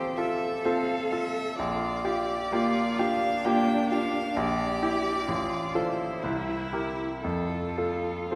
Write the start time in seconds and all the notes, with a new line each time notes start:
Already playing: A1 C4 F4 G4 A4 C5
0.17 F4 A4 E5
0.64 C4 F4 A4 F5
1.12 F4 A4 E5
1.58 A#1 F4 D5
2.05 F4 G4
2.52 A#3 F4 G4
2.98 D4 F4 G4 F5
3.44 A#3 F4 G4 G5
3.90 F4 G4 F5
4.36 A#1 G4 D5
4.82 E4 G4
5.27 A1 F4
5.74 E4 F4 A4 C5
6.23 C2 E4
6.73 G4 A#4
7.23 F2 F4 A4
7.78 F4 A4
8.29 C4 F4 A4 C5